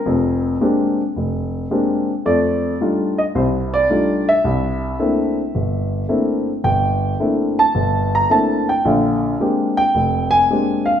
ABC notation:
X:1
M:4/4
L:1/8
Q:"Swing" 1/4=109
K:Bblyd
V:1 name="Grand piano"
B3 z4 z | d2 z _e c d2 =e- | e6 z2 | g2 z a2 b a g |
f2 z g2 _a2 f |]
V:2 name="Grand piano"
[F,,,F,,]2 [_A,B,CDG] z F,,,2 [A,B,CDG] z | [F,,A,]2 [G,A,D_EF] z [C,,C,]2 [G,A,DEF] z | C,,2 [A,B,CDE] z G,,,2 [A,B,CDE] z | G,,,2 [A,B,CDE] z G,,,2 [A,B,CDE] z |
[B,,,D,]2 [_A,B,CDG] z F,,,2 [A,B,CDG] z |]